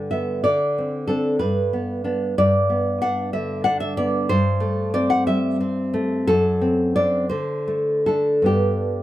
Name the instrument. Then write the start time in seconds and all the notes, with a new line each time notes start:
nylon-string guitar
Already playing: G2 D3 D4
0.11 B3 E5
0.44 D3 D5
0.78 C4
1.07 C4 D4 A4
1.39 G2 B4
1.73 B3
2.04 B3 D4
2.38 G2 D5
2.70 B3
3.02 D4 F#5
3.33 D3 E5
3.64 D4 F#5
3.80 E5
3.97 B3 D5
4.29 G2 C5
4.60 A3
4.94 C4 D5
5.10 F#5
5.27 G3 E5
5.61 C4
5.94 A3
6.27 F#2 A4
6.61 C4
6.96 C4 D4 D5
7.29 D3 C5
7.68 A3
8.06 A3 D4 A4
8.42 G2 B3 D4 G4